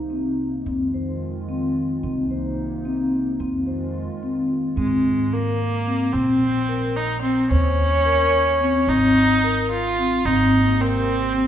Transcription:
Already playing: C2 C3 A#3 D#4
0.10 C4
0.64 F2 D#3 G#3 C4 F4
0.94 C5
1.49 C4
2.02 C2 C3 A#3 C4 D#4
2.31 C5
2.85 C4
3.38 F2 D#3 G#3 C4 F4
3.67 C5
4.23 C4
4.77 G#2 G#3 C4
5.33 A#3 A#4
5.87 C4
6.13 A#1 C4
6.69 A#4
6.97 D#4
7.22 C4
7.51 D#2 C#4 C5
8.05 A#4
8.61 C4
8.88 G#1 C4 D#4
9.44 A#4
9.72 F4
9.99 C4
10.23 G#1 C3 A#3 C4 D#4 G4
10.80 C4 A#4
11.34 C4

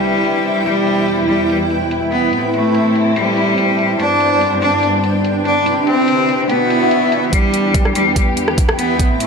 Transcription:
Already playing: C2 C3 G3 E4 G5
0.04 closed hi-hat
0.25 closed hi-hat
0.45 closed hi-hat
0.66 E2 B2 G3, closed hi-hat
0.87 closed hi-hat
0.92 B4
1.08 closed hi-hat
1.29 G3, closed hi-hat
1.50 closed hi-hat
1.70 closed hi-hat
1.91 closed hi-hat
2.12 B3, closed hi-hat
2.33 A2 A3 C4 E4, closed hi-hat
2.54 A3, closed hi-hat
2.60 C5
2.75 closed hi-hat
2.95 closed hi-hat
3.08 A5
3.16 G3, closed hi-hat
3.37 closed hi-hat
3.58 closed hi-hat
3.79 closed hi-hat
4.00 G2 G3 B3 D4, closed hi-hat
4.18 G5, closed hi-hat
4.41 closed hi-hat
4.62 D4, closed hi-hat
4.83 closed hi-hat
5.04 closed hi-hat
5.25 closed hi-hat
5.45 D4, closed hi-hat
5.66 C3 C4 E4 G4, closed hi-hat
5.87 C4, closed hi-hat
6.08 closed hi-hat
6.29 closed hi-hat
6.49 B2 B3 D4 F#4, closed hi-hat, swell
6.70 closed hi-hat
6.87 B4
6.91 closed hi-hat
7.12 closed hi-hat
7.33 E2 E3 G3 B3 E4 G4, kick, closed hi-hat
7.54 closed hi-hat
7.74 kick, closed hi-hat
7.85 cross-stick
7.94 G3 G5, closed hi-hat
8.16 kick, closed hi-hat
8.37 closed hi-hat
8.48 cross-stick
8.58 kick, closed hi-hat
8.69 cross-stick
8.79 B3, closed hi-hat
8.99 A2 A3 C4 E4, kick, closed hi-hat
9.20 A3, closed hi-hat

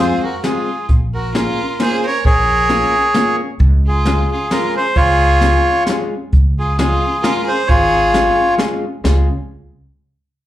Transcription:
Already playing: F2 G#3 F4
0.00 C4 F4 G#4 C5
0.23 F#4 A#4
0.44 G#3 C4 F4 G#4, snare, closed hi-hat
0.89 A#1, kick, closed hi-hat
1.14 F#4 A#4
1.35 A#3 C#4 F4 G#4 A#4, snare, closed hi-hat
1.80 A#3 C#4 F4 G#4 C5, snare, closed hi-hat
2.06 A#4 C#5
2.25 A#1 G#4 A#4 C#5, kick, closed hi-hat
2.69 A#3 C#4 F4 G#4, snare, closed hi-hat
3.14 A#3 C#4 F4 G#4, snare, closed hi-hat
3.59 C#2, kick, closed hi-hat
3.87 F4 G#4
4.05 G#3 C#4 F4 G#4, snare, closed hi-hat
4.32 F4 G#4
4.51 G#3 C#4 F4 G#4 A#4, snare, closed hi-hat
4.76 G#4 C5
4.96 C#2 F4 G#4 C#5, kick, closed hi-hat
5.41 G#3 C#4 F4 G#4, snare, closed hi-hat
5.86 G#3 C#4 F4 G#4, snare, closed hi-hat
6.32 C#2, kick, closed hi-hat
6.59 F4 G#4
6.77 G#3 C#4 F4 G#4, snare, closed hi-hat
7.21 G#3 C#4 F4 G#4 A#4, snare, closed hi-hat
7.47 G#4 C5
7.66 G#1 F4 G#4 C#5, kick, closed hi-hat
8.14 G#3 C#4 F4 G#4, snare, closed hi-hat
8.59 G#3 C#4 F4 G#4, snare, closed hi-hat
9.04 C#2 G#3 C#4 F4 G#4, snare, crash

